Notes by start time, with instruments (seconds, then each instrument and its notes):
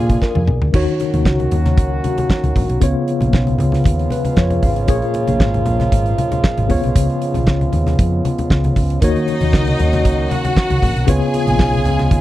Already playing: fingered electric bass A#2, french horn section D3 F3 A#3 F4, tine electric piano A#3 F4 G#4 D5 F5, string section G#4 G#5
0.10 kick, closed hi-hat, high conga
0.22 tine electric piano A#4, kick, snare, muted conga
0.35 fingered electric bass F2, high tom, high conga
0.48 fingered electric bass B1, mid tom, low conga
0.62 fingered electric bass D2, floor tom
0.73 fingered electric bass D#2, tine electric piano D#3 D#4 F#4 C#5, french horn section D#3 F#3 A#3 C#4 F#4, kick, crash, muted conga
0.88 closed hi-hat
1.00 closed hi-hat, muted conga
1.14 fingered electric bass D#2, closed hi-hat, high conga
1.25 fingered electric bass C#2, kick, snare
1.40 closed hi-hat, high conga
1.51 fingered electric bass D#2, closed hi-hat, muted conga, low conga
1.65 snare, closed hi-hat, high conga
1.78 fingered electric bass C#2, kick, closed hi-hat, muted conga
2.04 closed hi-hat, high conga
2.18 closed hi-hat, high conga
2.30 kick, snare
2.44 fingered electric bass C#2, closed hi-hat, high conga
2.56 fingered electric bass A#1, kick, open hi-hat, muted conga, low conga
2.69 fingered electric bass B1, closed hi-hat
2.80 fingered electric bass C#2, tine electric piano C#3 B3 F4 C#5, french horn section C#3 F3 G#3 B3 F4, kick, closed hi-hat
3.08 closed hi-hat
3.21 fingered electric bass A#1, closed hi-hat, high conga
3.33 fingered electric bass B1, kick, snare, muted conga
3.47 closed hi-hat, high conga
3.58 fingered electric bass C#2, closed hi-hat, low conga
3.72 snare, closed hi-hat, high conga
3.84 fingered electric bass D#2, kick, closed hi-hat, muted conga
3.99 closed hi-hat
4.10 tine electric piano B4, closed hi-hat, high conga
4.25 closed hi-hat, high conga
4.36 fingered electric bass F2, tine electric piano C#5, kick, snare, muted conga
4.50 closed hi-hat, high conga
4.63 fingered electric bass G#1, tine electric piano F5, kick, open hi-hat, muted conga, low conga
4.76 closed hi-hat
4.87 fingered electric bass A#1, tine electric piano A#2 A#3 G#4 C#5, french horn section A#3, kick, closed hi-hat
5.02 closed hi-hat
5.14 closed hi-hat, muted conga
5.28 fingered electric bass A#1, closed hi-hat, high conga
5.40 fingered electric bass G#1, kick, snare
5.54 closed hi-hat, high conga
5.66 fingered electric bass A#1, closed hi-hat, low conga
5.80 snare, closed hi-hat, high conga
5.92 fingered electric bass G#1, kick, closed hi-hat
6.06 closed hi-hat
6.18 closed hi-hat, muted conga, high conga
6.32 closed hi-hat, high conga
6.44 kick, snare, muted conga
6.58 fingered electric bass G#1, closed hi-hat, high conga
6.68 fingered electric bass C#2, tine electric piano C#3 B3 F4 C#5, french horn section C#3 B3, kick, open hi-hat, muted conga, low conga
6.84 fingered electric bass B1, closed hi-hat
6.96 fingered electric bass C#2, kick, closed hi-hat
7.10 closed hi-hat
7.22 closed hi-hat
7.34 fingered electric bass B1, closed hi-hat, high conga
7.47 fingered electric bass C#2, kick, snare, muted conga
7.61 closed hi-hat, high conga
7.73 fingered electric bass D#2, closed hi-hat, low conga
7.87 snare, closed hi-hat, high conga
7.99 fingered electric bass F2, kick, closed hi-hat
8.25 closed hi-hat, high conga
8.38 closed hi-hat, high conga
8.50 fingered electric bass C#2, kick, snare, muted conga
8.64 closed hi-hat, high conga
8.76 fingered electric bass C#2, kick, open hi-hat, muted conga, low conga
8.90 closed hi-hat
9.01 fingered electric bass D#2, tine electric piano D#3 A#3 F#4 C#5, french horn section D#3 F#3 A#3 C#4 F#4, string section D#4 D#5, kick, closed hi-hat
9.16 closed hi-hat
9.28 closed hi-hat, muted conga
9.41 fingered electric bass D#2, closed hi-hat, high conga
9.53 fingered electric bass C#2, kick, snare
9.68 closed hi-hat, high conga
9.79 fingered electric bass D#2, closed hi-hat, low conga
9.93 snare, closed hi-hat, high conga
10.05 fingered electric bass C#2, kick, closed hi-hat, muted conga
10.31 string section F#4 F#5, closed hi-hat, muted conga, high conga
10.45 closed hi-hat, high conga
10.56 kick, snare
10.70 fingered electric bass C#2, closed hi-hat, high conga
10.82 fingered electric bass A#1, kick, open hi-hat, low conga
10.96 fingered electric bass B1, closed hi-hat
11.07 fingered electric bass C#2, tine electric piano C#3 B3 F4 C#5, french horn section C#3 F3 G#3 B3 F4, string section G#4 G#5, kick, closed hi-hat, muted conga
11.22 closed hi-hat
11.34 closed hi-hat, muted conga
11.47 fingered electric bass A#1, closed hi-hat, high conga
11.59 fingered electric bass B1, kick, snare
11.73 closed hi-hat, high conga
11.85 fingered electric bass C#2, closed hi-hat, muted conga, low conga
11.99 snare, closed hi-hat, high conga
12.11 fingered electric bass D#2, kick, closed hi-hat